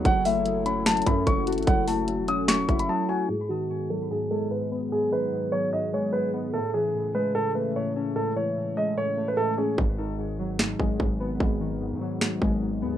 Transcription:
<<
  \new Staff \with { instrumentName = "Grand piano" } { \time 4/4 \key gis \phrygian \tempo 4 = 148 fis''8 e''4 b''8 a''8 b''8 cis'''8 r8 | fis''8 a''4 dis'''8 cis'''8. b''16 a''8 gis''8 | gis'8 fis'4 a'8 gis'8 a'8 b'8 r8 | gis'8 b'4 cis''8 dis''8 cis''8 b'8 r8 |
a'8 gis'4 b'8 a'8 b'8 cis''8 r8 | a'8 cis''4 dis''8 cis''8. b'16 a'8 gis'8 | r1 | r1 | }
  \new Staff \with { instrumentName = "Analog synth pad" } { \time 4/4 \key gis \phrygian << { a'1~ | a'1 | gis'1~ | gis'1~ |
gis'1~ | gis'1 | r1 | r1 | } \\ { <fis e'>1~ | <fis e'>1 | <fis b>1~ | <fis b>1 |
<cis cis'>1~ | <cis cis'>1 | r1 | r1 | } >> }
  \new Staff \with { instrumentName = "Synth keys" } { \clef bass \time 4/4 \key gis \phrygian fis8 a8 fis8 cis'8 fis8 e'8 fis8 fis'8 | fis8 a8 fis8 cis'8 fis8 e'8 fis8 fis'8 | gis,8 dis8 gis,8 fis8 gis,8 gis8 gis,8 b8 | gis,8 dis8 gis,8 fis8 gis,8 gis8 gis,8 b8 |
a,8 e8 a,8 gis8 a,8 a8 a,8 cis'8 | a,8 e8 a,8 gis8 a,8 a8 a,8 cis'8 | gis,8 dis8 gis,8 fis8 gis,8 gis8 gis,8 b8 | gis,8 dis8 gis,8 fis8 gis,8 gis8 gis,8 b8 | }
  \new Staff \with { instrumentName = "808-style bass" } { \clef bass \time 4/4 \key gis \phrygian fis,,2~ fis,,8 fis,8 fis,,8. a,,16 | fis,,4~ fis,,16 e,,4~ e,,16 fis,,8 r4 | r1 | r1 |
r1 | r1 | gis,,2~ gis,,8 gis,,8 gis,,4 | gis,,4~ gis,,16 gis,4~ gis,16 gis,,4 dis,8 | }
  \new DrumStaff \with { instrumentName = "Drums" } \drummode { \time 4/4 <hh bd>8 hho8 hh8 hh8 <hh sn>32 hh32 hh32 hh32 <hh bd>8 <hh bd>8 hh32 hh32 hh32 hh32 | <hh bd>8 hho8 hh8 hh8 <hh sn>8 <hh bd>16 hh16 r4 | r4 r4 r4 r4 | r4 r4 r4 r4 |
r4 r4 r4 r4 | r4 r4 r4 r4 | bd4 r4 sn8 bd8 bd4 | bd4 r4 sn8 bd8 r4 | }
>>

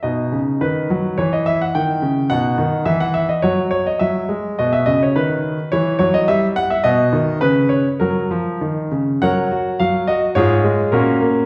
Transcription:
<<
  \new Staff \with { instrumentName = "Grand piano" } { \time 2/4 \key b \major \tempo 4 = 105 << { dis''4 b'4 | cis''16 dis''16 e''16 fis''16 g''4 | fis''4 e''16 fis''16 e''16 dis''16 | cis''8 cis''16 dis''16 e''4 |
dis''16 e''16 dis''16 cis''16 b'4 | cis''8 cis''16 dis''16 e''8 fis''16 e''16 | \key fis \major dis''4 b'8 cis''8 | ais'4 r4 |
<ais' cis'' fis''>4 eis''8 dis''8 | <eis' gis' cis''>4 <cis' fis' ais'>4 | } \\ { dis'2 | e'2 | dis'4 r4 | fis'4 r4 |
fis'2 | e'2 | fis'4 r4 | r2 |
r2 | r2 | } >> }
  \new Staff \with { instrumentName = "Grand piano" } { \clef bass \time 2/4 \key b \major b,8 cis8 dis8 fis8 | e4 dis8 cis8 | b,8 dis8 e4 | fis4 fis8 gis8 |
b,8 cis8 dis4 | e8 fis8 g4 | \key fis \major b,8 dis8 cis4 | fis8 eis8 dis8 cis8 |
fis8 fis'8 fis8 fis'8 | gis,8 gis8 ais,8 ais8 | }
>>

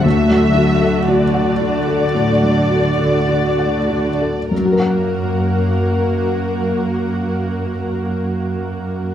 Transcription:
<<
  \new Staff \with { instrumentName = "Violin section" } { \time 4/4 \key fis \major \tempo 4 = 51 e''4 d''2. | ais'1 | }
  \new Staff \with { instrumentName = "Felt piano" } { \time 4/4 \key fis \major d,16 fis16 fis'16 a'16 fis'16 fis''16 fis'16 a'16 a,16 fis16 fis'16 a'16 fis'16 fis''16 fis'16 a'16 | <fis, fis fis' ais' fis''>1 | }
  \new Staff \with { instrumentName = "Harp" } { \time 4/4 \key fis \major << { r1 | <fis, fis fis' ais' fis''>1 | } \\ { <d fis fis' a'>1~ | <d fis fis' a'>1 | } >> }
  \new Staff \with { instrumentName = "Viola section" } { \time 4/4 \key fis \major <a fis'>1 | <ais fis'>1 | }
  \new Staff \with { instrumentName = "Cello section" } { \clef bass \time 4/4 \key fis \major d1 | fis,1 | }
>>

